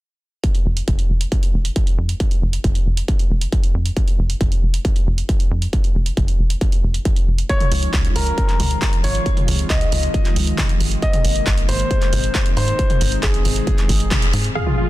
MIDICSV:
0, 0, Header, 1, 7, 480
1, 0, Start_track
1, 0, Tempo, 441176
1, 474, Time_signature, 4, 2, 24, 8
1, 16206, End_track
2, 0, Start_track
2, 0, Title_t, "Grand piano"
2, 0, Program_c, 0, 0
2, 8154, Note_on_c, 0, 73, 93
2, 8779, Note_off_c, 0, 73, 0
2, 8874, Note_on_c, 0, 70, 91
2, 9738, Note_off_c, 0, 70, 0
2, 9835, Note_on_c, 0, 73, 87
2, 10459, Note_off_c, 0, 73, 0
2, 10554, Note_on_c, 0, 75, 96
2, 11899, Note_off_c, 0, 75, 0
2, 11994, Note_on_c, 0, 75, 91
2, 12618, Note_off_c, 0, 75, 0
2, 12714, Note_on_c, 0, 72, 87
2, 13579, Note_off_c, 0, 72, 0
2, 13675, Note_on_c, 0, 72, 91
2, 14299, Note_off_c, 0, 72, 0
2, 14396, Note_on_c, 0, 68, 98
2, 15739, Note_off_c, 0, 68, 0
2, 15834, Note_on_c, 0, 68, 86
2, 16206, Note_off_c, 0, 68, 0
2, 16206, End_track
3, 0, Start_track
3, 0, Title_t, "Supersaw synth"
3, 0, Program_c, 1, 81
3, 15834, Note_on_c, 1, 77, 95
3, 15929, Note_off_c, 1, 77, 0
3, 15955, Note_on_c, 1, 65, 63
3, 16049, Note_off_c, 1, 65, 0
3, 16076, Note_on_c, 1, 65, 59
3, 16170, Note_off_c, 1, 65, 0
3, 16206, End_track
4, 0, Start_track
4, 0, Title_t, "Analog synth pad"
4, 0, Program_c, 2, 89
4, 8154, Note_on_c, 2, 51, 72
4, 8154, Note_on_c, 2, 53, 73
4, 8154, Note_on_c, 2, 56, 67
4, 8154, Note_on_c, 2, 61, 72
4, 8154, Note_on_c, 2, 65, 85
4, 10055, Note_off_c, 2, 61, 0
4, 10075, Note_on_c, 2, 48, 70
4, 11956, Note_off_c, 2, 53, 0
4, 11956, Note_off_c, 2, 65, 0
4, 11976, Note_off_c, 2, 48, 0
4, 11994, Note_on_c, 2, 48, 77
4, 11994, Note_on_c, 2, 58, 70
4, 11994, Note_on_c, 2, 63, 86
4, 13895, Note_off_c, 2, 58, 0
4, 13915, Note_on_c, 2, 60, 72
4, 15791, Note_off_c, 2, 51, 0
4, 15791, Note_off_c, 2, 56, 0
4, 15796, Note_off_c, 2, 48, 0
4, 15796, Note_off_c, 2, 63, 0
4, 15816, Note_off_c, 2, 60, 0
4, 15835, Note_on_c, 2, 53, 67
4, 15835, Note_on_c, 2, 56, 66
4, 15835, Note_on_c, 2, 68, 75
4, 15836, Note_on_c, 2, 48, 74
4, 15836, Note_on_c, 2, 65, 64
4, 16206, Note_off_c, 2, 48, 0
4, 16206, Note_off_c, 2, 53, 0
4, 16206, Note_off_c, 2, 56, 0
4, 16206, Note_off_c, 2, 65, 0
4, 16206, Note_off_c, 2, 68, 0
4, 16206, End_track
5, 0, Start_track
5, 0, Title_t, "Analog synth bass"
5, 0, Program_c, 3, 38
5, 713, Note_on_c, 3, 29, 94
5, 892, Note_off_c, 3, 29, 0
5, 954, Note_on_c, 3, 29, 89
5, 1133, Note_off_c, 3, 29, 0
5, 1194, Note_on_c, 3, 29, 84
5, 1372, Note_off_c, 3, 29, 0
5, 1675, Note_on_c, 3, 29, 95
5, 1853, Note_off_c, 3, 29, 0
5, 2155, Note_on_c, 3, 41, 95
5, 2333, Note_off_c, 3, 41, 0
5, 2635, Note_on_c, 3, 29, 97
5, 2813, Note_off_c, 3, 29, 0
5, 2875, Note_on_c, 3, 29, 90
5, 3053, Note_off_c, 3, 29, 0
5, 3115, Note_on_c, 3, 29, 87
5, 3293, Note_off_c, 3, 29, 0
5, 3595, Note_on_c, 3, 29, 101
5, 3773, Note_off_c, 3, 29, 0
5, 4074, Note_on_c, 3, 41, 96
5, 4253, Note_off_c, 3, 41, 0
5, 4555, Note_on_c, 3, 29, 99
5, 4733, Note_off_c, 3, 29, 0
5, 4795, Note_on_c, 3, 29, 87
5, 4973, Note_off_c, 3, 29, 0
5, 5034, Note_on_c, 3, 29, 87
5, 5213, Note_off_c, 3, 29, 0
5, 5514, Note_on_c, 3, 29, 100
5, 5692, Note_off_c, 3, 29, 0
5, 5995, Note_on_c, 3, 41, 97
5, 6173, Note_off_c, 3, 41, 0
5, 6474, Note_on_c, 3, 29, 103
5, 6653, Note_off_c, 3, 29, 0
5, 6714, Note_on_c, 3, 29, 90
5, 6893, Note_off_c, 3, 29, 0
5, 6954, Note_on_c, 3, 29, 85
5, 7133, Note_off_c, 3, 29, 0
5, 7434, Note_on_c, 3, 29, 89
5, 7613, Note_off_c, 3, 29, 0
5, 7914, Note_on_c, 3, 29, 90
5, 8092, Note_off_c, 3, 29, 0
5, 8394, Note_on_c, 3, 37, 105
5, 8572, Note_off_c, 3, 37, 0
5, 8634, Note_on_c, 3, 37, 93
5, 8812, Note_off_c, 3, 37, 0
5, 8874, Note_on_c, 3, 37, 94
5, 9052, Note_off_c, 3, 37, 0
5, 9354, Note_on_c, 3, 37, 101
5, 9532, Note_off_c, 3, 37, 0
5, 9834, Note_on_c, 3, 32, 103
5, 10013, Note_off_c, 3, 32, 0
5, 10314, Note_on_c, 3, 37, 98
5, 10493, Note_off_c, 3, 37, 0
5, 10554, Note_on_c, 3, 37, 86
5, 10733, Note_off_c, 3, 37, 0
5, 10794, Note_on_c, 3, 37, 93
5, 10972, Note_off_c, 3, 37, 0
5, 11274, Note_on_c, 3, 37, 104
5, 11452, Note_off_c, 3, 37, 0
5, 11753, Note_on_c, 3, 32, 93
5, 11932, Note_off_c, 3, 32, 0
5, 12234, Note_on_c, 3, 32, 103
5, 12412, Note_off_c, 3, 32, 0
5, 12474, Note_on_c, 3, 32, 91
5, 12653, Note_off_c, 3, 32, 0
5, 12713, Note_on_c, 3, 32, 96
5, 12892, Note_off_c, 3, 32, 0
5, 13193, Note_on_c, 3, 32, 108
5, 13372, Note_off_c, 3, 32, 0
5, 13674, Note_on_c, 3, 44, 95
5, 13853, Note_off_c, 3, 44, 0
5, 14154, Note_on_c, 3, 32, 99
5, 14332, Note_off_c, 3, 32, 0
5, 14395, Note_on_c, 3, 32, 91
5, 14573, Note_off_c, 3, 32, 0
5, 14634, Note_on_c, 3, 32, 87
5, 14812, Note_off_c, 3, 32, 0
5, 15114, Note_on_c, 3, 32, 102
5, 15293, Note_off_c, 3, 32, 0
5, 15594, Note_on_c, 3, 44, 97
5, 15772, Note_off_c, 3, 44, 0
5, 16206, End_track
6, 0, Start_track
6, 0, Title_t, "Impact"
6, 0, Program_c, 4, 103
6, 15834, Note_on_c, 4, 60, 65
6, 16206, Note_off_c, 4, 60, 0
6, 16206, End_track
7, 0, Start_track
7, 0, Title_t, "Drums"
7, 474, Note_on_c, 9, 36, 108
7, 474, Note_on_c, 9, 42, 60
7, 583, Note_off_c, 9, 36, 0
7, 583, Note_off_c, 9, 42, 0
7, 594, Note_on_c, 9, 42, 61
7, 703, Note_off_c, 9, 42, 0
7, 834, Note_on_c, 9, 42, 61
7, 943, Note_off_c, 9, 42, 0
7, 954, Note_on_c, 9, 36, 108
7, 954, Note_on_c, 9, 42, 64
7, 1063, Note_off_c, 9, 36, 0
7, 1063, Note_off_c, 9, 42, 0
7, 1074, Note_on_c, 9, 42, 62
7, 1183, Note_off_c, 9, 42, 0
7, 1314, Note_on_c, 9, 42, 64
7, 1423, Note_off_c, 9, 42, 0
7, 1434, Note_on_c, 9, 42, 61
7, 1435, Note_on_c, 9, 36, 113
7, 1543, Note_off_c, 9, 36, 0
7, 1543, Note_off_c, 9, 42, 0
7, 1554, Note_on_c, 9, 42, 62
7, 1663, Note_off_c, 9, 42, 0
7, 1794, Note_on_c, 9, 42, 66
7, 1903, Note_off_c, 9, 42, 0
7, 1914, Note_on_c, 9, 42, 61
7, 1915, Note_on_c, 9, 36, 115
7, 2023, Note_off_c, 9, 36, 0
7, 2023, Note_off_c, 9, 42, 0
7, 2035, Note_on_c, 9, 42, 60
7, 2143, Note_off_c, 9, 42, 0
7, 2275, Note_on_c, 9, 42, 64
7, 2383, Note_off_c, 9, 42, 0
7, 2395, Note_on_c, 9, 36, 119
7, 2395, Note_on_c, 9, 42, 60
7, 2503, Note_off_c, 9, 42, 0
7, 2504, Note_off_c, 9, 36, 0
7, 2515, Note_on_c, 9, 42, 61
7, 2623, Note_off_c, 9, 42, 0
7, 2755, Note_on_c, 9, 42, 57
7, 2864, Note_off_c, 9, 42, 0
7, 2874, Note_on_c, 9, 42, 64
7, 2875, Note_on_c, 9, 36, 112
7, 2983, Note_off_c, 9, 42, 0
7, 2984, Note_off_c, 9, 36, 0
7, 2995, Note_on_c, 9, 42, 60
7, 3103, Note_off_c, 9, 42, 0
7, 3235, Note_on_c, 9, 42, 64
7, 3344, Note_off_c, 9, 42, 0
7, 3355, Note_on_c, 9, 36, 116
7, 3355, Note_on_c, 9, 42, 57
7, 3464, Note_off_c, 9, 36, 0
7, 3464, Note_off_c, 9, 42, 0
7, 3475, Note_on_c, 9, 42, 61
7, 3584, Note_off_c, 9, 42, 0
7, 3715, Note_on_c, 9, 42, 64
7, 3824, Note_off_c, 9, 42, 0
7, 3835, Note_on_c, 9, 36, 117
7, 3835, Note_on_c, 9, 42, 58
7, 3943, Note_off_c, 9, 42, 0
7, 3944, Note_off_c, 9, 36, 0
7, 3955, Note_on_c, 9, 42, 58
7, 4064, Note_off_c, 9, 42, 0
7, 4195, Note_on_c, 9, 42, 61
7, 4304, Note_off_c, 9, 42, 0
7, 4315, Note_on_c, 9, 36, 122
7, 4315, Note_on_c, 9, 42, 57
7, 4424, Note_off_c, 9, 36, 0
7, 4424, Note_off_c, 9, 42, 0
7, 4435, Note_on_c, 9, 42, 56
7, 4544, Note_off_c, 9, 42, 0
7, 4675, Note_on_c, 9, 42, 60
7, 4784, Note_off_c, 9, 42, 0
7, 4795, Note_on_c, 9, 36, 113
7, 4795, Note_on_c, 9, 42, 62
7, 4904, Note_off_c, 9, 36, 0
7, 4904, Note_off_c, 9, 42, 0
7, 4915, Note_on_c, 9, 42, 61
7, 5024, Note_off_c, 9, 42, 0
7, 5155, Note_on_c, 9, 42, 61
7, 5264, Note_off_c, 9, 42, 0
7, 5275, Note_on_c, 9, 36, 121
7, 5276, Note_on_c, 9, 42, 58
7, 5384, Note_off_c, 9, 36, 0
7, 5384, Note_off_c, 9, 42, 0
7, 5395, Note_on_c, 9, 42, 62
7, 5504, Note_off_c, 9, 42, 0
7, 5635, Note_on_c, 9, 42, 58
7, 5744, Note_off_c, 9, 42, 0
7, 5755, Note_on_c, 9, 36, 120
7, 5755, Note_on_c, 9, 42, 61
7, 5864, Note_off_c, 9, 36, 0
7, 5864, Note_off_c, 9, 42, 0
7, 5875, Note_on_c, 9, 42, 57
7, 5984, Note_off_c, 9, 42, 0
7, 6115, Note_on_c, 9, 42, 56
7, 6224, Note_off_c, 9, 42, 0
7, 6235, Note_on_c, 9, 36, 118
7, 6235, Note_on_c, 9, 42, 57
7, 6344, Note_off_c, 9, 36, 0
7, 6344, Note_off_c, 9, 42, 0
7, 6355, Note_on_c, 9, 42, 57
7, 6463, Note_off_c, 9, 42, 0
7, 6594, Note_on_c, 9, 42, 58
7, 6703, Note_off_c, 9, 42, 0
7, 6714, Note_on_c, 9, 42, 60
7, 6715, Note_on_c, 9, 36, 119
7, 6823, Note_off_c, 9, 42, 0
7, 6824, Note_off_c, 9, 36, 0
7, 6834, Note_on_c, 9, 42, 61
7, 6943, Note_off_c, 9, 42, 0
7, 7074, Note_on_c, 9, 42, 58
7, 7183, Note_off_c, 9, 42, 0
7, 7194, Note_on_c, 9, 42, 55
7, 7195, Note_on_c, 9, 36, 116
7, 7303, Note_off_c, 9, 36, 0
7, 7303, Note_off_c, 9, 42, 0
7, 7315, Note_on_c, 9, 42, 61
7, 7424, Note_off_c, 9, 42, 0
7, 7554, Note_on_c, 9, 42, 57
7, 7663, Note_off_c, 9, 42, 0
7, 7674, Note_on_c, 9, 42, 57
7, 7675, Note_on_c, 9, 36, 116
7, 7783, Note_off_c, 9, 36, 0
7, 7783, Note_off_c, 9, 42, 0
7, 7795, Note_on_c, 9, 42, 58
7, 7904, Note_off_c, 9, 42, 0
7, 8034, Note_on_c, 9, 42, 58
7, 8143, Note_off_c, 9, 42, 0
7, 8155, Note_on_c, 9, 36, 116
7, 8155, Note_on_c, 9, 42, 57
7, 8263, Note_off_c, 9, 36, 0
7, 8263, Note_off_c, 9, 42, 0
7, 8274, Note_on_c, 9, 42, 58
7, 8274, Note_on_c, 9, 47, 75
7, 8383, Note_off_c, 9, 42, 0
7, 8383, Note_off_c, 9, 47, 0
7, 8395, Note_on_c, 9, 46, 98
7, 8503, Note_off_c, 9, 46, 0
7, 8515, Note_on_c, 9, 42, 57
7, 8623, Note_off_c, 9, 42, 0
7, 8635, Note_on_c, 9, 36, 113
7, 8635, Note_on_c, 9, 39, 114
7, 8635, Note_on_c, 9, 42, 60
7, 8743, Note_off_c, 9, 39, 0
7, 8743, Note_off_c, 9, 42, 0
7, 8744, Note_off_c, 9, 36, 0
7, 8755, Note_on_c, 9, 42, 59
7, 8864, Note_off_c, 9, 42, 0
7, 8875, Note_on_c, 9, 46, 102
7, 8983, Note_off_c, 9, 46, 0
7, 8995, Note_on_c, 9, 42, 59
7, 9104, Note_off_c, 9, 42, 0
7, 9115, Note_on_c, 9, 36, 116
7, 9115, Note_on_c, 9, 42, 56
7, 9224, Note_off_c, 9, 36, 0
7, 9224, Note_off_c, 9, 42, 0
7, 9235, Note_on_c, 9, 39, 35
7, 9235, Note_on_c, 9, 42, 60
7, 9343, Note_off_c, 9, 39, 0
7, 9343, Note_off_c, 9, 42, 0
7, 9354, Note_on_c, 9, 46, 96
7, 9354, Note_on_c, 9, 47, 60
7, 9463, Note_off_c, 9, 46, 0
7, 9463, Note_off_c, 9, 47, 0
7, 9474, Note_on_c, 9, 42, 64
7, 9583, Note_off_c, 9, 42, 0
7, 9594, Note_on_c, 9, 39, 104
7, 9594, Note_on_c, 9, 42, 59
7, 9595, Note_on_c, 9, 36, 118
7, 9703, Note_off_c, 9, 39, 0
7, 9703, Note_off_c, 9, 42, 0
7, 9704, Note_off_c, 9, 36, 0
7, 9714, Note_on_c, 9, 42, 58
7, 9823, Note_off_c, 9, 42, 0
7, 9835, Note_on_c, 9, 46, 91
7, 9943, Note_off_c, 9, 46, 0
7, 9954, Note_on_c, 9, 42, 63
7, 10063, Note_off_c, 9, 42, 0
7, 10075, Note_on_c, 9, 36, 110
7, 10075, Note_on_c, 9, 42, 60
7, 10183, Note_off_c, 9, 36, 0
7, 10184, Note_off_c, 9, 42, 0
7, 10195, Note_on_c, 9, 42, 59
7, 10195, Note_on_c, 9, 47, 76
7, 10304, Note_off_c, 9, 42, 0
7, 10304, Note_off_c, 9, 47, 0
7, 10315, Note_on_c, 9, 46, 99
7, 10423, Note_off_c, 9, 46, 0
7, 10435, Note_on_c, 9, 42, 60
7, 10544, Note_off_c, 9, 42, 0
7, 10554, Note_on_c, 9, 39, 111
7, 10554, Note_on_c, 9, 42, 62
7, 10555, Note_on_c, 9, 36, 109
7, 10663, Note_off_c, 9, 36, 0
7, 10663, Note_off_c, 9, 39, 0
7, 10663, Note_off_c, 9, 42, 0
7, 10675, Note_on_c, 9, 42, 65
7, 10784, Note_off_c, 9, 42, 0
7, 10795, Note_on_c, 9, 46, 102
7, 10904, Note_off_c, 9, 46, 0
7, 10915, Note_on_c, 9, 42, 63
7, 11023, Note_off_c, 9, 42, 0
7, 11035, Note_on_c, 9, 36, 109
7, 11035, Note_on_c, 9, 42, 58
7, 11143, Note_off_c, 9, 36, 0
7, 11143, Note_off_c, 9, 42, 0
7, 11155, Note_on_c, 9, 39, 33
7, 11155, Note_on_c, 9, 42, 62
7, 11263, Note_off_c, 9, 39, 0
7, 11263, Note_off_c, 9, 42, 0
7, 11274, Note_on_c, 9, 46, 96
7, 11383, Note_off_c, 9, 46, 0
7, 11395, Note_on_c, 9, 42, 63
7, 11504, Note_off_c, 9, 42, 0
7, 11515, Note_on_c, 9, 36, 115
7, 11515, Note_on_c, 9, 39, 112
7, 11515, Note_on_c, 9, 42, 60
7, 11515, Note_on_c, 9, 47, 64
7, 11623, Note_off_c, 9, 36, 0
7, 11624, Note_off_c, 9, 39, 0
7, 11624, Note_off_c, 9, 42, 0
7, 11624, Note_off_c, 9, 47, 0
7, 11635, Note_on_c, 9, 42, 60
7, 11744, Note_off_c, 9, 42, 0
7, 11755, Note_on_c, 9, 46, 98
7, 11863, Note_off_c, 9, 46, 0
7, 11875, Note_on_c, 9, 42, 63
7, 11984, Note_off_c, 9, 42, 0
7, 11994, Note_on_c, 9, 36, 114
7, 11995, Note_on_c, 9, 42, 62
7, 12103, Note_off_c, 9, 36, 0
7, 12104, Note_off_c, 9, 42, 0
7, 12115, Note_on_c, 9, 42, 67
7, 12115, Note_on_c, 9, 47, 76
7, 12224, Note_off_c, 9, 42, 0
7, 12224, Note_off_c, 9, 47, 0
7, 12235, Note_on_c, 9, 46, 95
7, 12343, Note_off_c, 9, 46, 0
7, 12355, Note_on_c, 9, 42, 64
7, 12464, Note_off_c, 9, 42, 0
7, 12475, Note_on_c, 9, 36, 106
7, 12475, Note_on_c, 9, 39, 118
7, 12475, Note_on_c, 9, 42, 69
7, 12583, Note_off_c, 9, 36, 0
7, 12584, Note_off_c, 9, 39, 0
7, 12584, Note_off_c, 9, 42, 0
7, 12595, Note_on_c, 9, 42, 68
7, 12704, Note_off_c, 9, 42, 0
7, 12715, Note_on_c, 9, 46, 100
7, 12823, Note_off_c, 9, 46, 0
7, 12834, Note_on_c, 9, 42, 66
7, 12943, Note_off_c, 9, 42, 0
7, 12955, Note_on_c, 9, 36, 110
7, 12955, Note_on_c, 9, 42, 63
7, 13063, Note_off_c, 9, 42, 0
7, 13064, Note_off_c, 9, 36, 0
7, 13074, Note_on_c, 9, 39, 35
7, 13074, Note_on_c, 9, 42, 64
7, 13183, Note_off_c, 9, 39, 0
7, 13183, Note_off_c, 9, 42, 0
7, 13194, Note_on_c, 9, 46, 95
7, 13194, Note_on_c, 9, 47, 61
7, 13303, Note_off_c, 9, 46, 0
7, 13303, Note_off_c, 9, 47, 0
7, 13314, Note_on_c, 9, 42, 71
7, 13423, Note_off_c, 9, 42, 0
7, 13434, Note_on_c, 9, 39, 116
7, 13434, Note_on_c, 9, 42, 65
7, 13435, Note_on_c, 9, 36, 111
7, 13543, Note_off_c, 9, 36, 0
7, 13543, Note_off_c, 9, 39, 0
7, 13543, Note_off_c, 9, 42, 0
7, 13554, Note_on_c, 9, 42, 65
7, 13663, Note_off_c, 9, 42, 0
7, 13674, Note_on_c, 9, 46, 92
7, 13783, Note_off_c, 9, 46, 0
7, 13794, Note_on_c, 9, 42, 61
7, 13903, Note_off_c, 9, 42, 0
7, 13915, Note_on_c, 9, 36, 112
7, 13915, Note_on_c, 9, 42, 62
7, 14024, Note_off_c, 9, 36, 0
7, 14024, Note_off_c, 9, 42, 0
7, 14035, Note_on_c, 9, 42, 68
7, 14035, Note_on_c, 9, 47, 74
7, 14144, Note_off_c, 9, 42, 0
7, 14144, Note_off_c, 9, 47, 0
7, 14154, Note_on_c, 9, 46, 102
7, 14263, Note_off_c, 9, 46, 0
7, 14274, Note_on_c, 9, 42, 69
7, 14383, Note_off_c, 9, 42, 0
7, 14394, Note_on_c, 9, 39, 126
7, 14394, Note_on_c, 9, 42, 69
7, 14395, Note_on_c, 9, 36, 113
7, 14503, Note_off_c, 9, 39, 0
7, 14503, Note_off_c, 9, 42, 0
7, 14504, Note_off_c, 9, 36, 0
7, 14514, Note_on_c, 9, 42, 71
7, 14623, Note_off_c, 9, 42, 0
7, 14634, Note_on_c, 9, 46, 105
7, 14743, Note_off_c, 9, 46, 0
7, 14755, Note_on_c, 9, 42, 64
7, 14863, Note_off_c, 9, 42, 0
7, 14874, Note_on_c, 9, 42, 64
7, 14875, Note_on_c, 9, 36, 116
7, 14983, Note_off_c, 9, 42, 0
7, 14984, Note_off_c, 9, 36, 0
7, 14995, Note_on_c, 9, 39, 36
7, 14995, Note_on_c, 9, 42, 69
7, 15104, Note_off_c, 9, 39, 0
7, 15104, Note_off_c, 9, 42, 0
7, 15115, Note_on_c, 9, 36, 57
7, 15115, Note_on_c, 9, 46, 94
7, 15223, Note_off_c, 9, 46, 0
7, 15224, Note_off_c, 9, 36, 0
7, 15235, Note_on_c, 9, 42, 68
7, 15344, Note_off_c, 9, 42, 0
7, 15355, Note_on_c, 9, 36, 113
7, 15355, Note_on_c, 9, 39, 118
7, 15355, Note_on_c, 9, 42, 64
7, 15355, Note_on_c, 9, 47, 62
7, 15463, Note_off_c, 9, 39, 0
7, 15463, Note_off_c, 9, 42, 0
7, 15463, Note_off_c, 9, 47, 0
7, 15464, Note_off_c, 9, 36, 0
7, 15475, Note_on_c, 9, 42, 67
7, 15584, Note_off_c, 9, 42, 0
7, 15595, Note_on_c, 9, 46, 101
7, 15704, Note_off_c, 9, 46, 0
7, 15715, Note_on_c, 9, 42, 65
7, 15824, Note_off_c, 9, 42, 0
7, 15835, Note_on_c, 9, 49, 70
7, 15944, Note_off_c, 9, 49, 0
7, 15956, Note_on_c, 9, 47, 65
7, 15956, Note_on_c, 9, 82, 28
7, 16064, Note_off_c, 9, 47, 0
7, 16064, Note_off_c, 9, 82, 0
7, 16206, End_track
0, 0, End_of_file